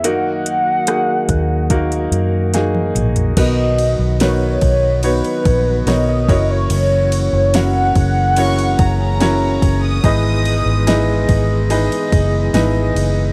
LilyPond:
<<
  \new Staff \with { instrumentName = "Violin section" } { \time 4/4 \key b \major \tempo 4 = 72 r1 | r1 | r2 cis'''8 ais''16 ais''4 dis'''16~ | dis'''4.~ dis'''16 r2 r16 | }
  \new Staff \with { instrumentName = "Soft synth lead" } { \time 4/4 \key b \major fis''2. r4 | dis''4 cis''4 b'4 dis''16 dis''8 cis''16 | cis''4 fis''2~ fis''8 r8 | r1 | }
  \new Staff \with { instrumentName = "Grand piano" } { \time 4/4 \key b \major <ais dis' fis' ais'>4 <ais dis' fis' gis'>4 <ais dis' fis' ais'>4 <ais dis' fis' gis'>4 | <b dis' fis' ais' b'>4 <b dis' fis' ais' b'>4 <b dis' fis' b' cis''>4 <b dis' fis' ais' cis''>8 <cis' e' fis' ais' cis''>8~ | <cis' e' fis' ais' cis''>4 <cis' e' fis' ais' cis''>4 <cis' e' fis' ais' cis''>4 <cis' e' fis' ais' cis''>4 | <dis' e' gis' b' dis''>4 <dis' e' gis' b' dis''>4 <dis' e' gis' b' dis''>4 <dis' e' gis' b' dis''>4 | }
  \new Staff \with { instrumentName = "Grand piano" } { \clef bass \time 4/4 \key b \major r1 | b,4. r2 r8 | r1 | gis,4. r2 r8 | }
  \new Staff \with { instrumentName = "Tonewheel organ" } { \time 4/4 \key b \major fis'1 | fis'1~ | fis'4. gis'2~ gis'8 | gis'1 | }
  \new Staff \with { instrumentName = "Tonewheel organ" } { \clef bass \time 4/4 \key b \major <dis fis ais>1 | <dis fis b>2.~ <dis fis b>8 <e ais cis'>8~ | <e ais cis'>1 | <e gis b>1 | }
  \new Staff \with { instrumentName = "Fingered electric bass" } { \clef bass \time 4/4 \key b \major fis,4. dis,4 fis,4 ais,,8 | b,,8. b,,8. b,,8. r16 ais,,8 b,,8 fis,,8 | fis,,8. fis,,8. fis,,4 fis,,4 fis,,8 | gis,,8. gis,,8. gis,,8. r16 fis,,8 gis,,8 fis,,8 | }
  \new DrumStaff \with { instrumentName = "Drums" } \drummode { \time 4/4 hh8 hh8 <hh ss>8 <hh bd>8 <hh bd>16 hh16 hh8 <hh sn>16 tommh16 <hh toml>16 <hh tomfh>16 | <cymc bd cymr>8 cymr8 <cymr sn>8 <bd cymr>8 cymr16 cymr16 <bd cymr>8 <cymr sn>8 <bd cymr>8 | cymr8 cymr8 <cymr sn>8 <bd cymr>8 cymr16 cymr16 <bd cymr>8 <cymr sn>8 <bd cymr>8 | <bd cymr>8 cymr8 <cymr sn>8 <bd cymr>8 cymr16 cymr16 <bd cymr>8 <cymr sn>8 cymr8 | }
>>